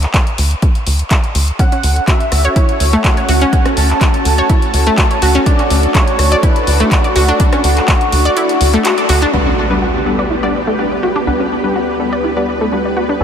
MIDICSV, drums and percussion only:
0, 0, Header, 1, 2, 480
1, 0, Start_track
1, 0, Tempo, 483871
1, 1580, Time_signature, 4, 2, 24, 8
1, 13133, End_track
2, 0, Start_track
2, 0, Title_t, "Drums"
2, 26, Note_on_c, 9, 42, 38
2, 27, Note_on_c, 9, 39, 37
2, 125, Note_off_c, 9, 42, 0
2, 126, Note_off_c, 9, 39, 0
2, 139, Note_on_c, 9, 36, 125
2, 139, Note_on_c, 9, 42, 88
2, 140, Note_on_c, 9, 39, 118
2, 238, Note_off_c, 9, 36, 0
2, 238, Note_off_c, 9, 42, 0
2, 239, Note_off_c, 9, 39, 0
2, 266, Note_on_c, 9, 42, 39
2, 365, Note_off_c, 9, 42, 0
2, 379, Note_on_c, 9, 46, 111
2, 478, Note_off_c, 9, 46, 0
2, 506, Note_on_c, 9, 42, 36
2, 605, Note_off_c, 9, 42, 0
2, 619, Note_on_c, 9, 36, 122
2, 619, Note_on_c, 9, 42, 88
2, 718, Note_off_c, 9, 36, 0
2, 718, Note_off_c, 9, 42, 0
2, 746, Note_on_c, 9, 42, 37
2, 845, Note_off_c, 9, 42, 0
2, 859, Note_on_c, 9, 46, 107
2, 958, Note_off_c, 9, 46, 0
2, 985, Note_on_c, 9, 42, 38
2, 1085, Note_off_c, 9, 42, 0
2, 1098, Note_on_c, 9, 42, 88
2, 1099, Note_on_c, 9, 36, 121
2, 1099, Note_on_c, 9, 39, 120
2, 1197, Note_off_c, 9, 42, 0
2, 1198, Note_off_c, 9, 39, 0
2, 1199, Note_off_c, 9, 36, 0
2, 1226, Note_on_c, 9, 42, 35
2, 1326, Note_off_c, 9, 42, 0
2, 1339, Note_on_c, 9, 46, 110
2, 1439, Note_off_c, 9, 46, 0
2, 1467, Note_on_c, 9, 42, 35
2, 1566, Note_off_c, 9, 42, 0
2, 1579, Note_on_c, 9, 36, 118
2, 1581, Note_on_c, 9, 42, 88
2, 1679, Note_off_c, 9, 36, 0
2, 1680, Note_off_c, 9, 42, 0
2, 1708, Note_on_c, 9, 42, 38
2, 1807, Note_off_c, 9, 42, 0
2, 1820, Note_on_c, 9, 46, 104
2, 1919, Note_off_c, 9, 46, 0
2, 1947, Note_on_c, 9, 42, 38
2, 2047, Note_off_c, 9, 42, 0
2, 2059, Note_on_c, 9, 36, 118
2, 2060, Note_on_c, 9, 42, 88
2, 2061, Note_on_c, 9, 39, 113
2, 2158, Note_off_c, 9, 36, 0
2, 2159, Note_off_c, 9, 42, 0
2, 2161, Note_off_c, 9, 39, 0
2, 2187, Note_on_c, 9, 42, 38
2, 2286, Note_off_c, 9, 42, 0
2, 2300, Note_on_c, 9, 37, 70
2, 2300, Note_on_c, 9, 46, 110
2, 2399, Note_off_c, 9, 37, 0
2, 2399, Note_off_c, 9, 46, 0
2, 2426, Note_on_c, 9, 42, 35
2, 2525, Note_off_c, 9, 42, 0
2, 2540, Note_on_c, 9, 36, 119
2, 2540, Note_on_c, 9, 42, 88
2, 2639, Note_off_c, 9, 36, 0
2, 2639, Note_off_c, 9, 42, 0
2, 2666, Note_on_c, 9, 42, 39
2, 2766, Note_off_c, 9, 42, 0
2, 2780, Note_on_c, 9, 46, 107
2, 2880, Note_off_c, 9, 46, 0
2, 2907, Note_on_c, 9, 42, 39
2, 3006, Note_off_c, 9, 42, 0
2, 3019, Note_on_c, 9, 36, 115
2, 3019, Note_on_c, 9, 42, 87
2, 3020, Note_on_c, 9, 39, 114
2, 3118, Note_off_c, 9, 36, 0
2, 3118, Note_off_c, 9, 42, 0
2, 3119, Note_off_c, 9, 39, 0
2, 3146, Note_on_c, 9, 42, 37
2, 3245, Note_off_c, 9, 42, 0
2, 3260, Note_on_c, 9, 46, 105
2, 3359, Note_off_c, 9, 46, 0
2, 3387, Note_on_c, 9, 42, 38
2, 3486, Note_off_c, 9, 42, 0
2, 3499, Note_on_c, 9, 36, 117
2, 3500, Note_on_c, 9, 42, 93
2, 3599, Note_off_c, 9, 36, 0
2, 3599, Note_off_c, 9, 42, 0
2, 3626, Note_on_c, 9, 37, 84
2, 3626, Note_on_c, 9, 42, 39
2, 3725, Note_off_c, 9, 37, 0
2, 3725, Note_off_c, 9, 42, 0
2, 3739, Note_on_c, 9, 46, 101
2, 3838, Note_off_c, 9, 46, 0
2, 3867, Note_on_c, 9, 42, 39
2, 3868, Note_on_c, 9, 39, 35
2, 3966, Note_off_c, 9, 42, 0
2, 3967, Note_off_c, 9, 39, 0
2, 3979, Note_on_c, 9, 36, 114
2, 3980, Note_on_c, 9, 42, 91
2, 3981, Note_on_c, 9, 39, 112
2, 4079, Note_off_c, 9, 36, 0
2, 4079, Note_off_c, 9, 42, 0
2, 4080, Note_off_c, 9, 39, 0
2, 4107, Note_on_c, 9, 42, 40
2, 4206, Note_off_c, 9, 42, 0
2, 4220, Note_on_c, 9, 46, 101
2, 4319, Note_off_c, 9, 46, 0
2, 4346, Note_on_c, 9, 42, 37
2, 4445, Note_off_c, 9, 42, 0
2, 4459, Note_on_c, 9, 42, 90
2, 4460, Note_on_c, 9, 36, 117
2, 4559, Note_off_c, 9, 36, 0
2, 4559, Note_off_c, 9, 42, 0
2, 4586, Note_on_c, 9, 42, 39
2, 4686, Note_off_c, 9, 42, 0
2, 4699, Note_on_c, 9, 46, 101
2, 4799, Note_off_c, 9, 46, 0
2, 4827, Note_on_c, 9, 42, 40
2, 4926, Note_off_c, 9, 42, 0
2, 4939, Note_on_c, 9, 36, 113
2, 4939, Note_on_c, 9, 42, 95
2, 4940, Note_on_c, 9, 39, 115
2, 5038, Note_off_c, 9, 36, 0
2, 5038, Note_off_c, 9, 42, 0
2, 5039, Note_off_c, 9, 39, 0
2, 5066, Note_on_c, 9, 42, 39
2, 5166, Note_off_c, 9, 42, 0
2, 5179, Note_on_c, 9, 46, 102
2, 5278, Note_off_c, 9, 46, 0
2, 5306, Note_on_c, 9, 42, 39
2, 5406, Note_off_c, 9, 42, 0
2, 5419, Note_on_c, 9, 36, 114
2, 5419, Note_on_c, 9, 42, 90
2, 5518, Note_off_c, 9, 36, 0
2, 5518, Note_off_c, 9, 42, 0
2, 5546, Note_on_c, 9, 42, 39
2, 5645, Note_off_c, 9, 42, 0
2, 5659, Note_on_c, 9, 46, 102
2, 5758, Note_off_c, 9, 46, 0
2, 5786, Note_on_c, 9, 42, 41
2, 5885, Note_off_c, 9, 42, 0
2, 5899, Note_on_c, 9, 36, 118
2, 5899, Note_on_c, 9, 42, 97
2, 5901, Note_on_c, 9, 39, 117
2, 5998, Note_off_c, 9, 36, 0
2, 5999, Note_off_c, 9, 42, 0
2, 6000, Note_off_c, 9, 39, 0
2, 6026, Note_on_c, 9, 42, 42
2, 6125, Note_off_c, 9, 42, 0
2, 6140, Note_on_c, 9, 37, 69
2, 6140, Note_on_c, 9, 46, 105
2, 6239, Note_off_c, 9, 37, 0
2, 6239, Note_off_c, 9, 46, 0
2, 6267, Note_on_c, 9, 42, 40
2, 6366, Note_off_c, 9, 42, 0
2, 6379, Note_on_c, 9, 36, 113
2, 6379, Note_on_c, 9, 42, 96
2, 6478, Note_off_c, 9, 36, 0
2, 6479, Note_off_c, 9, 42, 0
2, 6507, Note_on_c, 9, 42, 42
2, 6606, Note_off_c, 9, 42, 0
2, 6619, Note_on_c, 9, 46, 98
2, 6718, Note_off_c, 9, 46, 0
2, 6746, Note_on_c, 9, 42, 43
2, 6845, Note_off_c, 9, 42, 0
2, 6859, Note_on_c, 9, 36, 113
2, 6859, Note_on_c, 9, 42, 97
2, 6861, Note_on_c, 9, 39, 119
2, 6958, Note_off_c, 9, 36, 0
2, 6959, Note_off_c, 9, 42, 0
2, 6960, Note_off_c, 9, 39, 0
2, 6987, Note_on_c, 9, 42, 42
2, 7086, Note_off_c, 9, 42, 0
2, 7099, Note_on_c, 9, 46, 101
2, 7198, Note_off_c, 9, 46, 0
2, 7226, Note_on_c, 9, 42, 40
2, 7325, Note_off_c, 9, 42, 0
2, 7338, Note_on_c, 9, 42, 94
2, 7339, Note_on_c, 9, 36, 119
2, 7437, Note_off_c, 9, 42, 0
2, 7438, Note_off_c, 9, 36, 0
2, 7465, Note_on_c, 9, 37, 83
2, 7465, Note_on_c, 9, 42, 42
2, 7564, Note_off_c, 9, 37, 0
2, 7564, Note_off_c, 9, 42, 0
2, 7578, Note_on_c, 9, 46, 105
2, 7678, Note_off_c, 9, 46, 0
2, 7706, Note_on_c, 9, 42, 42
2, 7707, Note_on_c, 9, 39, 38
2, 7805, Note_off_c, 9, 42, 0
2, 7806, Note_off_c, 9, 39, 0
2, 7819, Note_on_c, 9, 36, 115
2, 7819, Note_on_c, 9, 42, 95
2, 7820, Note_on_c, 9, 39, 123
2, 7918, Note_off_c, 9, 36, 0
2, 7918, Note_off_c, 9, 42, 0
2, 7919, Note_off_c, 9, 39, 0
2, 7946, Note_on_c, 9, 42, 44
2, 8045, Note_off_c, 9, 42, 0
2, 8059, Note_on_c, 9, 46, 105
2, 8159, Note_off_c, 9, 46, 0
2, 8187, Note_on_c, 9, 42, 42
2, 8286, Note_off_c, 9, 42, 0
2, 8299, Note_on_c, 9, 42, 99
2, 8398, Note_off_c, 9, 42, 0
2, 8425, Note_on_c, 9, 42, 42
2, 8525, Note_off_c, 9, 42, 0
2, 8538, Note_on_c, 9, 46, 101
2, 8637, Note_off_c, 9, 46, 0
2, 8665, Note_on_c, 9, 42, 42
2, 8764, Note_off_c, 9, 42, 0
2, 8778, Note_on_c, 9, 42, 101
2, 8779, Note_on_c, 9, 39, 119
2, 8877, Note_off_c, 9, 42, 0
2, 8878, Note_off_c, 9, 39, 0
2, 8905, Note_on_c, 9, 42, 42
2, 9005, Note_off_c, 9, 42, 0
2, 9018, Note_on_c, 9, 46, 102
2, 9117, Note_off_c, 9, 46, 0
2, 9145, Note_on_c, 9, 42, 39
2, 9244, Note_off_c, 9, 42, 0
2, 13133, End_track
0, 0, End_of_file